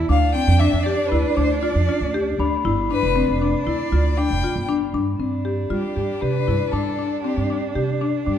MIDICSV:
0, 0, Header, 1, 6, 480
1, 0, Start_track
1, 0, Tempo, 511073
1, 85, Time_signature, 5, 2, 24, 8
1, 7874, End_track
2, 0, Start_track
2, 0, Title_t, "Glockenspiel"
2, 0, Program_c, 0, 9
2, 0, Note_on_c, 0, 81, 41
2, 234, Note_off_c, 0, 81, 0
2, 2252, Note_on_c, 0, 83, 56
2, 2694, Note_off_c, 0, 83, 0
2, 7874, End_track
3, 0, Start_track
3, 0, Title_t, "Violin"
3, 0, Program_c, 1, 40
3, 99, Note_on_c, 1, 77, 97
3, 315, Note_off_c, 1, 77, 0
3, 328, Note_on_c, 1, 79, 104
3, 560, Note_on_c, 1, 76, 92
3, 574, Note_off_c, 1, 79, 0
3, 781, Note_on_c, 1, 74, 89
3, 795, Note_off_c, 1, 76, 0
3, 1022, Note_on_c, 1, 71, 85
3, 1036, Note_off_c, 1, 74, 0
3, 1266, Note_on_c, 1, 72, 86
3, 1281, Note_off_c, 1, 71, 0
3, 1501, Note_off_c, 1, 72, 0
3, 1507, Note_on_c, 1, 74, 77
3, 2197, Note_off_c, 1, 74, 0
3, 2730, Note_on_c, 1, 71, 104
3, 3173, Note_off_c, 1, 71, 0
3, 3440, Note_on_c, 1, 74, 78
3, 3925, Note_on_c, 1, 79, 102
3, 3939, Note_off_c, 1, 74, 0
3, 4403, Note_off_c, 1, 79, 0
3, 5372, Note_on_c, 1, 67, 66
3, 5829, Note_on_c, 1, 71, 82
3, 5843, Note_off_c, 1, 67, 0
3, 6310, Note_on_c, 1, 69, 70
3, 6324, Note_off_c, 1, 71, 0
3, 6779, Note_off_c, 1, 69, 0
3, 6785, Note_on_c, 1, 67, 62
3, 7128, Note_off_c, 1, 67, 0
3, 7756, Note_on_c, 1, 67, 68
3, 7874, Note_off_c, 1, 67, 0
3, 7874, End_track
4, 0, Start_track
4, 0, Title_t, "Cello"
4, 0, Program_c, 2, 42
4, 0, Note_on_c, 2, 64, 85
4, 82, Note_on_c, 2, 62, 83
4, 96, Note_off_c, 2, 64, 0
4, 2481, Note_off_c, 2, 62, 0
4, 2486, Note_on_c, 2, 62, 70
4, 4605, Note_off_c, 2, 62, 0
4, 4885, Note_on_c, 2, 62, 69
4, 7874, Note_off_c, 2, 62, 0
4, 7874, End_track
5, 0, Start_track
5, 0, Title_t, "Marimba"
5, 0, Program_c, 3, 12
5, 85, Note_on_c, 3, 62, 77
5, 245, Note_off_c, 3, 62, 0
5, 330, Note_on_c, 3, 60, 66
5, 488, Note_off_c, 3, 60, 0
5, 570, Note_on_c, 3, 62, 77
5, 728, Note_off_c, 3, 62, 0
5, 808, Note_on_c, 3, 67, 68
5, 967, Note_off_c, 3, 67, 0
5, 1049, Note_on_c, 3, 64, 71
5, 1207, Note_off_c, 3, 64, 0
5, 1286, Note_on_c, 3, 62, 75
5, 1445, Note_off_c, 3, 62, 0
5, 1528, Note_on_c, 3, 65, 68
5, 1686, Note_off_c, 3, 65, 0
5, 1771, Note_on_c, 3, 65, 65
5, 1928, Note_off_c, 3, 65, 0
5, 2012, Note_on_c, 3, 67, 76
5, 2169, Note_off_c, 3, 67, 0
5, 2250, Note_on_c, 3, 62, 71
5, 2407, Note_off_c, 3, 62, 0
5, 2489, Note_on_c, 3, 64, 78
5, 2647, Note_off_c, 3, 64, 0
5, 2729, Note_on_c, 3, 62, 69
5, 2886, Note_off_c, 3, 62, 0
5, 2964, Note_on_c, 3, 60, 81
5, 3123, Note_off_c, 3, 60, 0
5, 3207, Note_on_c, 3, 62, 65
5, 3365, Note_off_c, 3, 62, 0
5, 3444, Note_on_c, 3, 64, 71
5, 3603, Note_off_c, 3, 64, 0
5, 3685, Note_on_c, 3, 65, 66
5, 3844, Note_off_c, 3, 65, 0
5, 3925, Note_on_c, 3, 62, 69
5, 4084, Note_off_c, 3, 62, 0
5, 4169, Note_on_c, 3, 65, 69
5, 4326, Note_off_c, 3, 65, 0
5, 4402, Note_on_c, 3, 62, 80
5, 4562, Note_off_c, 3, 62, 0
5, 4643, Note_on_c, 3, 62, 70
5, 4802, Note_off_c, 3, 62, 0
5, 4881, Note_on_c, 3, 60, 63
5, 5041, Note_off_c, 3, 60, 0
5, 5118, Note_on_c, 3, 67, 62
5, 5279, Note_off_c, 3, 67, 0
5, 5356, Note_on_c, 3, 65, 65
5, 5518, Note_off_c, 3, 65, 0
5, 5598, Note_on_c, 3, 67, 53
5, 5759, Note_off_c, 3, 67, 0
5, 5842, Note_on_c, 3, 67, 57
5, 6002, Note_off_c, 3, 67, 0
5, 6082, Note_on_c, 3, 64, 53
5, 6242, Note_off_c, 3, 64, 0
5, 6321, Note_on_c, 3, 62, 65
5, 6482, Note_off_c, 3, 62, 0
5, 6562, Note_on_c, 3, 62, 53
5, 6722, Note_off_c, 3, 62, 0
5, 6803, Note_on_c, 3, 60, 67
5, 6963, Note_off_c, 3, 60, 0
5, 7044, Note_on_c, 3, 62, 58
5, 7204, Note_off_c, 3, 62, 0
5, 7282, Note_on_c, 3, 67, 64
5, 7443, Note_off_c, 3, 67, 0
5, 7524, Note_on_c, 3, 62, 67
5, 7684, Note_off_c, 3, 62, 0
5, 7763, Note_on_c, 3, 62, 61
5, 7874, Note_off_c, 3, 62, 0
5, 7874, End_track
6, 0, Start_track
6, 0, Title_t, "Upright bass"
6, 0, Program_c, 4, 32
6, 86, Note_on_c, 4, 38, 87
6, 311, Note_off_c, 4, 38, 0
6, 445, Note_on_c, 4, 41, 93
6, 671, Note_off_c, 4, 41, 0
6, 686, Note_on_c, 4, 41, 74
6, 911, Note_off_c, 4, 41, 0
6, 1050, Note_on_c, 4, 38, 77
6, 1160, Note_off_c, 4, 38, 0
6, 1288, Note_on_c, 4, 38, 80
6, 1625, Note_off_c, 4, 38, 0
6, 1646, Note_on_c, 4, 41, 73
6, 1758, Note_off_c, 4, 41, 0
6, 1885, Note_on_c, 4, 38, 78
6, 2223, Note_off_c, 4, 38, 0
6, 2242, Note_on_c, 4, 38, 79
6, 2468, Note_off_c, 4, 38, 0
6, 2485, Note_on_c, 4, 31, 90
6, 2710, Note_off_c, 4, 31, 0
6, 2843, Note_on_c, 4, 29, 88
6, 3068, Note_off_c, 4, 29, 0
6, 3079, Note_on_c, 4, 29, 72
6, 3306, Note_off_c, 4, 29, 0
6, 3441, Note_on_c, 4, 38, 80
6, 3554, Note_off_c, 4, 38, 0
6, 3681, Note_on_c, 4, 38, 81
6, 4020, Note_off_c, 4, 38, 0
6, 4042, Note_on_c, 4, 29, 75
6, 4155, Note_off_c, 4, 29, 0
6, 4280, Note_on_c, 4, 31, 73
6, 4619, Note_off_c, 4, 31, 0
6, 4636, Note_on_c, 4, 43, 77
6, 4864, Note_off_c, 4, 43, 0
6, 4876, Note_on_c, 4, 43, 68
6, 5330, Note_off_c, 4, 43, 0
6, 5356, Note_on_c, 4, 55, 74
6, 5471, Note_off_c, 4, 55, 0
6, 5601, Note_on_c, 4, 43, 66
6, 5714, Note_off_c, 4, 43, 0
6, 5842, Note_on_c, 4, 48, 69
6, 6067, Note_off_c, 4, 48, 0
6, 6085, Note_on_c, 4, 43, 74
6, 6196, Note_off_c, 4, 43, 0
6, 6319, Note_on_c, 4, 43, 68
6, 6546, Note_off_c, 4, 43, 0
6, 6923, Note_on_c, 4, 43, 72
6, 7149, Note_off_c, 4, 43, 0
6, 7283, Note_on_c, 4, 48, 66
6, 7509, Note_off_c, 4, 48, 0
6, 7766, Note_on_c, 4, 43, 81
6, 7874, Note_off_c, 4, 43, 0
6, 7874, End_track
0, 0, End_of_file